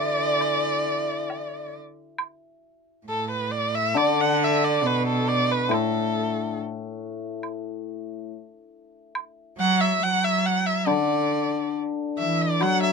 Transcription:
0.00 1.74 D3 medium
0.00 1.28 E3 medium
0.00 1.73 D5 medium
0.00 1.75 D5 medium
0.41 high woodblock soft
1.30 low woodblock soft
2.18 high woodblock medium
3.07 3.98 A2 medium
3.07 3.29 A4 medium
3.31 3.53 B4 medium
3.52 3.76 D5 medium
3.75 3.98 E5 medium
3.94 6.56 D3 medium
3.94 4.85 D3 medium
3.94 4.22 D5 medium
3.94 high woodblock soft
4.21 4.45 F#5 medium
4.43 4.65 E5 medium
4.64 4.88 D5 medium
4.83 5.72 B2 medium
4.83 5.06 B4 medium
5.07 5.30 A4 medium
5.28 5.53 D5 medium
5.51 5.75 B4 medium
5.69 8.29 A2 medium
5.69 6.57 A2 medium
5.69 high woodblock medium
5.74 6.59 A4 medium
7.43 high woodblock soft
9.15 high woodblock medium
9.58 9.98 F#3 medium
9.58 9.82 F#5 medium
9.80 10.05 E5 medium
10.02 10.91 F#3 medium
10.02 10.25 F#5 medium
10.24 10.47 E5 medium
10.46 10.67 F#5 medium
10.66 10.89 E5 medium
10.86 12.93 D3 medium
10.86 11.76 D3 medium
10.86 11.75 D5 medium
10.86 high woodblock soft
12.18 12.63 E3 medium
12.18 12.43 E5 medium
12.42 12.64 D5 medium
12.60 12.93 F#3 medium
12.60 12.82 F#5 loud
12.60 high woodblock medium
12.83 12.93 E5 medium

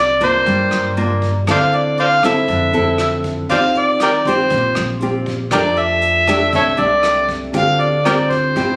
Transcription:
0.00 0.42 C2 medium
0.00 0.44 C3 medium
0.00 0.20 D5 loud
0.21 0.93 A#3 medium
0.21 0.93 D4 medium
0.21 0.93 F4 medium
0.21 0.94 C5 medium
0.21 kick medium
0.21 closed hi-hat soft
0.46 0.70 G2 medium
0.46 1.45 G3 medium
0.46 kick soft
0.46 closed hi-hat soft
0.71 1.44 G2 medium
0.71 cross-stick medium
0.71 closed hi-hat soft
0.97 1.29 A#3 medium
0.97 1.30 D4 medium
0.97 1.30 F4 medium
0.97 closed hi-hat soft
1.22 kick soft
1.22 closed hi-hat soft
1.47 2.45 D2 medium
1.47 2.46 D3 medium
1.47 2.19 C4 medium
1.47 2.19 E4 medium
1.47 2.20 A4 medium
1.47 1.58 C5 medium
1.47 1.59 D5 medium
1.47 1.77 F5 loud
1.47 kick medium
1.47 cross-stick medium
1.47 closed hi-hat soft
1.73 1.99 D5 medium
1.73 closed hi-hat soft
1.97 2.08 C5 medium
1.97 2.06 D5 medium
1.97 2.23 F5 loud
1.97 closed hi-hat soft
2.23 2.70 C4 medium
2.23 2.71 E4 medium
2.23 2.71 A4 medium
2.23 3.21 E5 medium
2.23 kick medium
2.23 cross-stick medium
2.23 closed hi-hat soft
2.48 2.72 F2 medium
2.48 3.47 D3 medium
2.48 kick medium
2.48 closed hi-hat soft
2.73 3.46 F2 medium
2.73 3.45 C4 medium
2.73 3.46 E4 medium
2.73 3.46 A4 medium
2.73 closed hi-hat soft
2.98 cross-stick medium
2.98 closed hi-hat soft
3.24 kick soft
3.24 closed hi-hat soft
3.49 4.47 D#2 medium
3.49 4.49 D#3 soft
3.49 4.22 C4 medium
3.49 4.22 F4 soft
3.49 4.23 G4 medium
3.49 3.59 C5 medium
3.49 3.58 D5 medium
3.49 3.80 F5 loud
3.49 kick medium
3.49 closed hi-hat soft
3.75 4.02 D5 medium
3.75 closed hi-hat soft
4.00 4.10 G4 medium
4.00 4.11 A#4 medium
4.00 4.30 D5 medium
4.00 cross-stick medium
4.00 closed hi-hat soft
4.25 4.98 C4 medium
4.25 4.99 F4 medium
4.25 4.99 G4 medium
4.25 5.03 C5 medium
4.25 kick medium
4.25 closed hi-hat soft
4.50 4.74 A#1 medium
4.50 5.50 A#2 medium
4.50 kick medium
4.50 closed hi-hat soft
4.75 5.48 A#1 medium
4.75 cross-stick medium
4.75 closed hi-hat soft
5.00 5.34 C4 medium
5.00 5.35 F4 medium
5.00 5.35 G4 medium
5.00 closed hi-hat soft
5.26 kick medium
5.26 closed hi-hat soft
5.51 6.49 F2 medium
5.51 6.51 F3 soft
5.51 6.24 A3 soft
5.51 6.24 D4 medium
5.51 5.60 G4 medium
5.51 6.24 G4 medium
5.51 5.60 A#4 medium
5.51 5.80 D5 medium
5.51 kick medium
5.51 cross-stick medium
5.51 closed hi-hat soft
5.77 6.54 E5 loud
5.77 closed hi-hat soft
6.01 closed hi-hat soft
6.27 6.74 A3 medium
6.27 6.75 D4 medium
6.27 6.75 G4 medium
6.27 kick soft
6.27 cross-stick medium
6.27 closed hi-hat soft
6.52 6.77 C2 medium
6.52 7.52 C3 medium
6.52 6.64 A4 medium
6.52 6.63 C#5 medium
6.52 6.81 E5 medium
6.52 kick medium
6.52 closed hi-hat soft
6.77 7.50 C2 medium
6.77 7.50 A3 medium
6.77 7.50 D4 medium
6.77 7.50 G4 medium
6.77 7.30 D5 medium
6.77 closed hi-hat soft
7.03 cross-stick medium
7.03 closed hi-hat soft
7.28 kick soft
7.28 closed hi-hat soft
7.53 8.52 D2 medium
7.53 8.53 D3 soft
7.53 7.87 C4 medium
7.53 7.87 F4 soft
7.53 7.87 G4 medium
7.53 7.82 F5 loud
7.53 kick medium
7.53 closed hi-hat soft
7.80 8.05 D5 medium
7.80 closed hi-hat soft
8.05 8.52 C4 medium
8.05 8.52 F4 medium
8.05 8.14 G4 medium
8.05 8.52 G4 medium
8.05 8.14 A#4 medium
8.05 8.32 D5 loud
8.05 cross-stick medium
8.05 closed hi-hat soft
8.30 8.76 C5 medium
8.30 kick soft
8.30 closed hi-hat soft
8.56 8.76 A1 medium
8.56 8.76 A2 medium
8.56 8.76 C4 medium
8.56 8.76 F4 medium
8.56 8.76 G4 medium
8.56 kick medium
8.56 closed hi-hat soft

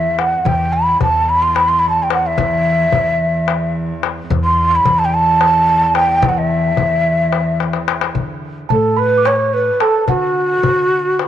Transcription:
0.00 0.46 E2 medium
0.00 0.21 E5 medium
0.19 0.49 F#5 medium
0.19 darbuka tek medium
0.45 0.94 E2 medium
0.45 4.29 E2 medium
0.45 0.74 G5 medium
0.45 darbuka dum medium
0.73 1.01 B5 medium
1.01 1.98 E2 medium
1.01 1.31 A5 medium
1.01 darbuka dum medium
1.29 1.44 B5 medium
1.42 1.57 C6 medium
1.55 1.70 B5 medium
1.55 darbuka tek medium
1.69 1.81 C6 medium
1.79 1.89 B5 medium
1.89 2.04 A5 medium
2.03 2.12 G5 medium
2.10 2.28 F#5 medium
2.10 darbuka tek medium
2.27 3.78 E5 medium
2.38 2.87 E3 loud
2.38 darbuka dum medium
2.92 3.90 E3 medium
2.92 darbuka dum medium
3.48 darbuka tek medium
4.03 darbuka tek medium
4.30 8.21 E2 medium
4.30 4.79 E2 loud
4.30 darbuka dum medium
4.44 4.71 C6 loud
4.71 4.76 C6 medium
4.75 5.00 B5 medium
4.85 5.82 E2 medium
4.85 darbuka dum medium
4.99 5.06 A5 loud
5.05 5.16 G5 medium
5.14 5.97 A5 loud
5.41 darbuka tek medium
5.95 6.30 G5 loud
5.95 darbuka tek medium
6.22 6.71 E3 loud
6.22 darbuka dum medium
6.29 6.39 F#5 medium
6.38 7.58 E5 medium
6.77 7.75 E3 medium
6.77 darbuka dum medium
7.33 darbuka tek medium
7.60 darbuka tek medium
7.73 darbuka ka medium
7.88 darbuka tek medium
8.01 darbuka ka medium
8.15 8.64 D3 medium
8.15 darbuka dum medium
8.69 9.68 A2 medium
8.69 9.00 A4 medium
8.69 8.98 A5 medium
8.69 darbuka dum medium
8.97 9.28 B4 medium
8.97 9.19 B5 medium
8.97 darbuka ka soft
9.18 9.25 D6 medium
9.25 9.55 C#5 medium
9.25 9.83 C#6 medium
9.25 darbuka tek medium
9.53 9.83 B4 medium
9.80 10.08 A4 medium
9.80 10.09 A5 medium
9.80 darbuka tek medium
10.08 10.57 D3 medium
10.08 11.28 F#4 medium
10.08 11.28 F#5 medium
10.08 darbuka dum medium
10.63 11.28 D3 medium
10.63 darbuka dum medium
10.91 darbuka ka soft
11.19 darbuka tek medium

